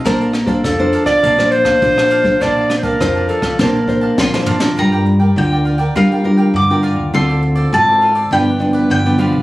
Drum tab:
HH |xxxxx-x-x-xxx-xx|x-xxx-x---------|----------------|----------------|
SD |r-r-r--r-r-r-r--|r-r-r--ro---oo-o|----------------|----------------|
FT |----------------|--------------o-|----------------|----------------|
BD |o--oo--oo--oo--o|o--oo--oo-o-o---|----------------|----------------|